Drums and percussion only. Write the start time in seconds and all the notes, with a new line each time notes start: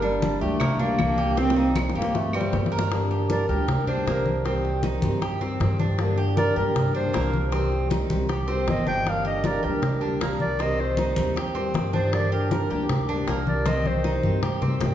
0.03 high bongo, high conga
0.22 high bongo, high conga
0.41 high bongo, high conga
0.60 high bongo, high conga, low conga, claves
0.79 high bongo, high conga, low conga
0.99 high bongo, low bongo, high conga, claves
1.18 high conga
1.37 high bongo, high conga
1.50 high bongo
1.57 high conga
1.75 low bongo, high conga, claves
1.90 high bongo
1.95 high conga
2.02 high bongo
2.15 low bongo, high conga
2.33 high conga, claves
2.41 low bongo
2.53 low bongo, high conga
2.66 low bongo
2.72 high conga
2.79 low bongo
2.91 high bongo, high conga
3.11 high conga
3.30 high bongo, high conga
3.49 high conga
3.68 high bongo, high conga, low conga
3.87 high conga, low conga
4.06 high bongo, low bongo, high conga
4.26 high conga
4.45 high bongo, high conga
4.64 high bongo, high conga
4.83 high bongo, high conga
5.02 high conga
5.22 high bongo, high conga
5.41 high bongo, high conga
5.60 high bongo, low bongo, high conga
5.80 high bongo, high conga
5.99 high bongo, high conga
6.18 high conga
6.37 high bongo, high conga
6.56 high conga
6.76 high bongo, high conga, low conga
6.95 high conga
7.14 high bongo, low bongo, high conga
7.34 high conga
7.52 high bongo, high conga
7.72 high bongo, high conga
7.91 high bongo, high conga
8.10 high conga
8.29 high bongo, high conga
8.48 high bongo, high conga
8.68 high bongo, low bongo, high conga
8.87 high bongo, high conga
9.06 high bongo, high conga
9.25 high conga
9.44 high bongo, high conga
9.63 high conga
9.82 high bongo, high conga, low conga
10.02 high conga
10.21 high bongo, low bongo, high conga
10.40 high conga
10.60 high bongo, high conga
10.79 high bongo, high conga
10.97 high bongo, high conga
11.16 high conga
11.36 high bongo, high conga
11.55 high bongo, high conga
11.74 high bongo, low bongo, high conga
11.93 high bongo, high conga
12.13 high bongo, high conga
12.32 high conga
12.51 high bongo, high conga
12.70 high conga
12.89 high bongo, high conga, low conga
13.09 high conga
13.28 high bongo, low bongo, high conga
13.47 high conga
13.66 high bongo, high conga
13.85 high bongo, high conga
14.04 high bongo
14.23 high conga
14.43 high bongo, low conga
14.62 high bongo, low conga
14.81 high bongo, low bongo, low conga